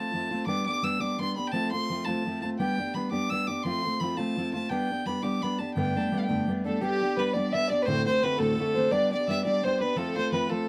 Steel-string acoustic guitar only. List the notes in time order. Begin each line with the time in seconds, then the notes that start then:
Already playing: F3 A3 C4 F4
0.13 F3 A3 C4 F4
0.31 A3 C4 F4
0.47 G3 B3 D4 G4
0.66 B3 D4 G4
0.83 G3 B3 D4 G4
1.00 G3 B3 D4 G4
1.19 G3 B3 D4 G4
1.36 B3 D4 G4
1.53 F3 A3 C4 F4
1.73 A3 C4 F4
1.90 F3 A3 C4 F4
2.06 F3 A3 C4 F4
2.25 F3 A3 C4 F4
2.42 A3 C4 F4
2.59 G3 B3 D4 G4
2.78 B3 D4 G4
2.94 G3 B3 D4 G4
3.12 G3 B3 D4 G4
3.31 G3 B3 D4 G4
3.48 B3 D4 G4
3.65 F3 A3 C4 F4
3.84 A3 C4 F4
4.00 F3 A3 C4 F4
4.17 F3 A3 C4 F4
4.37 F3 A3 C4 F4
4.53 A3 C4 F4
4.70 G3 B3 D4 G4
4.90 B3 D4 G4
5.06 G3 B3 D4 G4
5.23 G3 B3 D4 G4
5.43 G3 B3 D4 G4
5.59 B3 D4 G4
5.76 G2 D3 G3 A3 B3 D4
5.95 G3 A3 B3 D4
6.12 G3 A3 B3 D4
6.29 G2 D3 G3 A3 B3 D4
6.48 G3 A3 B3 D4
6.65 G3 A3 B3 D4
6.81 G3 B3 D4 G4
7.01 B3 D4 G4
7.17 G3 B3 D4 G4
7.34 G3 B3 D4 G4
7.53 G3 B3 D4 G4
7.70 B3 D4 G4
7.87 D2 A2 D3 A3 C4 F#4
8.06 D3 A3 C4 F#4
8.22 D3 A3 C4 F#4
8.39 D2 A2 D3 A3 C4 F#4
8.57 D3 A3 C4 F#4
8.75 D3 A3 C4 F#4
8.91 G3 B3 D4 G4
9.11 B3 D4 G4
9.28 G3 B3 D4 G4
9.45 G3 B3 D4 G4
9.64 G3 B3 D4 G4
9.80 B3 D4 G4
9.96 F3 A3 C4 F4
10.16 A3 C4 F4
10.32 F3 A3 C4 F4
10.49 F3 A3 C4 F4